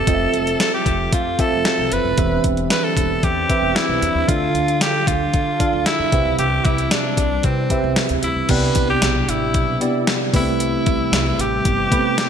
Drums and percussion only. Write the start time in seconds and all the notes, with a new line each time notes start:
0.07 kick, closed hi-hat
0.34 closed hi-hat
0.47 closed hi-hat
0.60 snare, closed hi-hat
0.86 kick, closed hi-hat
1.12 kick, closed hi-hat
1.39 kick, closed hi-hat
1.65 snare, closed hi-hat
1.92 closed hi-hat
2.18 kick, closed hi-hat
2.44 kick, closed hi-hat
2.57 closed hi-hat
2.70 snare, closed hi-hat
2.97 kick, closed hi-hat
3.23 kick, closed hi-hat
3.50 kick, closed hi-hat
3.76 snare, closed hi-hat
4.02 closed hi-hat
4.29 kick, closed hi-hat
4.55 closed hi-hat
4.68 closed hi-hat
4.81 snare, closed hi-hat
5.07 kick, closed hi-hat
5.34 kick, closed hi-hat
5.60 kick, closed hi-hat
5.86 snare, closed hi-hat
6.12 kick, closed hi-hat
6.39 closed hi-hat
6.65 kick, closed hi-hat
6.78 closed hi-hat
6.91 snare, closed hi-hat
7.17 kick, closed hi-hat
7.43 kick, closed hi-hat
7.70 kick, closed hi-hat
7.96 snare, closed hi-hat
8.09 closed hi-hat
8.23 closed hi-hat
8.49 kick, closed hi-hat, crash
8.75 kick, closed hi-hat
9.02 snare, closed hi-hat
9.29 closed hi-hat
9.54 kick, closed hi-hat
9.81 closed hi-hat
10.07 snare, closed hi-hat
10.34 kick, open hi-hat
10.60 closed hi-hat
10.86 kick, closed hi-hat
11.13 snare, closed hi-hat
11.39 closed hi-hat
11.65 kick, closed hi-hat
11.92 kick, closed hi-hat
12.18 snare, closed hi-hat